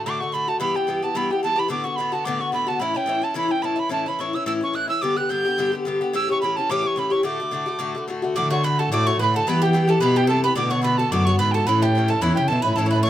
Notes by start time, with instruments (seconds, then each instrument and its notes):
0.05 bouzouki A2 D3 A3 F#4, tin whistle D6
0.20 bouzouki D3 A3 F#4, tin whistle C#6
0.32 bouzouki A2 D3 A3 F#4, tin whistle B5
0.48 bouzouki D3 A3 F#4, tin whistle A5
0.60 bouzouki G2 E3 B3 G4, tin whistle B5
0.74 bouzouki E3 B3 G4, tin whistle G5
0.87 bouzouki G2 E3 B3 G4
1.02 bouzouki E3 B3 G4, tin whistle A5
1.15 bouzouki G2 E3 B3 G4, tin whistle B5
1.31 bouzouki E3 B3 G4, tin whistle G5
1.43 bouzouki G2 E3 B3 G4, tin whistle A5
1.56 bouzouki E3 B3 G4, tin whistle B5
1.68 bouzouki A2 D3 B3 F#4, tin whistle D6
1.84 bouzouki D3 B3 F#4, tin whistle C#6
1.96 bouzouki A2 D3, tin whistle B5
2.00 bouzouki B3 F#4
2.12 bouzouki D3 B3 F#4, tin whistle A5
2.24 bouzouki A2 D3 B3 F#4, tin whistle D6
2.39 bouzouki D3 B3 F#4, tin whistle C#6
2.52 bouzouki A2 D3 B3 F#4, tin whistle B5
2.67 bouzouki D3 B3 F#4, tin whistle A5
2.80 bouzouki A2 E3 C#4 E4, tin whistle B5
2.95 bouzouki E3 C#4 E4, tin whistle G5
3.06 bouzouki A2 E3 C#4 E4
3.22 bouzouki E3 C#4 E4, tin whistle A5
3.34 bouzouki A2 E3 C#4 E4, tin whistle B5
3.48 bouzouki E3 C#4 E4, tin whistle G5
3.62 bouzouki A2 E3 C#4 E4, tin whistle A5 B5
3.76 bouzouki E3 C#4 E4, tin whistle B5
3.89 bouzouki A2 E3 C#4 E4, tin whistle A5
4.06 bouzouki E3 C#4 E4, tin whistle B5
4.19 bouzouki A2 E3 C#4 E4, tin whistle C#6
4.33 bouzouki E3 C#4 E4, tin whistle E6
4.46 bouzouki A2 E3 C#4 E4, tin whistle E6
4.61 bouzouki E3 C#4 E4, tin whistle C#6
4.73 bouzouki A2 E3 C#4 E4, tin whistle F#6
4.87 bouzouki E3 C#4 E4, tin whistle E6
5.01 bouzouki G2 D3 B3 G4, tin whistle D6
5.16 bouzouki D3 B3 G4, tin whistle F#6
5.29 bouzouki G2 D3 B3 G4, tin whistle G6
5.45 bouzouki D3 B3 G4
5.58 bouzouki G2 D3 B3 G4
5.73 bouzouki D3 B3
5.85 bouzouki G2 D3 B3 G4
6.01 bouzouki D3 B3 G4
6.13 bouzouki A2 E3 C#4 G4, tin whistle E6
6.29 bouzouki E3 C#4 G4, tin whistle C#6
6.41 bouzouki A2 E3 C#4 G4, tin whistle B5
6.56 bouzouki E3 C#4 G4, tin whistle A5
6.69 bouzouki A2 E3 C#4 G4, tin whistle D6
6.83 bouzouki E3 C#4 G4
6.87 tin whistle C#6
6.96 bouzouki A2 E3 C#4 G4, tin whistle B5
7.08 bouzouki C#4 G4, tin whistle B5 C#6
7.13 bouzouki E3
7.23 bouzouki A2 D3 A3 F#4, tin whistle D6
7.40 bouzouki D3 A3 F#4
7.51 bouzouki A2 D3 A3 F#4
7.66 bouzouki D3 A3 F#4
7.79 bouzouki A2 D3 A3 F#4
7.95 bouzouki D3 A3 F#4
8.08 bouzouki A2 D3 A3 F#4
8.22 bouzouki D3 A3 F#4
8.36 bouzouki A2 D3 A3 F#4, cello D3, mandolin D5, tin whistle D6
8.50 bouzouki D3 A3 F#4, mandolin C#5, tin whistle C#6
8.63 bouzouki A2 D3 A3 F#4, mandolin B4, tin whistle B5
8.79 bouzouki D3 A3 F#4, mandolin A4, tin whistle A5
8.92 bouzouki A2 D3 A3 F#4, cello A2, mandolin D5, tin whistle D6
9.06 bouzouki D3 A3 F#4, mandolin C#5, tin whistle C#6
9.19 cello A2, bouzouki A2 D3 A3, mandolin B4, tin whistle B5
9.24 bouzouki F#4
9.34 bouzouki D3 A3 F#4, mandolin A4, tin whistle A5
9.47 bouzouki G2 E3 B3 G4, cello E3, mandolin B4, tin whistle B5
9.62 bouzouki E3 B3 G4, mandolin G4, tin whistle G5
9.73 bouzouki G2 E3 B3 G4, mandolin G4
9.88 bouzouki E3 B3 G4, mandolin A4, tin whistle A5
10.01 bouzouki G2 E3 B3 G4, cello B2, mandolin B4, tin whistle B5
10.16 bouzouki E3 B3 G4, mandolin G4, tin whistle G5
10.27 bouzouki G2 E3 B3 G4, cello C3, mandolin A4, tin whistle A5
10.44 bouzouki E3 B3 G4, mandolin B4, tin whistle B5
10.56 bouzouki A2 D3 B3 F#4, cello B2, mandolin D5, tin whistle D6
10.70 bouzouki D3 B3 F#4, mandolin C#5, tin whistle C#6
10.82 bouzouki A2 D3 B3 F#4, mandolin B4, tin whistle B5
10.97 bouzouki D3 B3 F#4, mandolin A4, tin whistle A5
11.11 cello F#2, bouzouki A2 D3 B3 F#4, mandolin D5, tin whistle D6
11.25 bouzouki F#4, mandolin C#5, tin whistle C#6
11.29 bouzouki D3 B3
11.38 cello G#2, bouzouki A2 D3 B3 F#4, mandolin B4, tin whistle B5
11.51 bouzouki B3 F#4, mandolin A4, tin whistle G5 A5
11.56 bouzouki D3
11.66 bouzouki A2 E3 C#4 E4, cello A2, mandolin B4, tin whistle B5
11.82 bouzouki E3 C#4 E4, mandolin G4, tin whistle G5
11.95 bouzouki A2 E3 C#4 E4
12.08 bouzouki C#4 E4, mandolin A4, tin whistle A5
12.13 bouzouki E3
12.21 cello E2, bouzouki A2 E3 C#4 E4, mandolin B4, tin whistle B5
12.35 cello C#3, bouzouki C#4 E4, mandolin G4, tin whistle G5
12.39 bouzouki E3
12.48 bouzouki A2 E3, cello B2, mandolin A4, tin whistle A5
12.52 bouzouki C#4 E4
12.62 cello A2, bouzouki E4, mandolin B4, tin whistle B5
12.66 bouzouki E3 C#4
12.73 mandolin A4, tin whistle A5 B5
12.77 bouzouki A2 E3 C#4 E4, cello A2
12.86 mandolin C#5, tin whistle B5
12.91 bouzouki C#4 E4, mandolin B4
12.96 bouzouki E3
13.03 bouzouki A2 E3, mandolin C#5, tin whistle C#6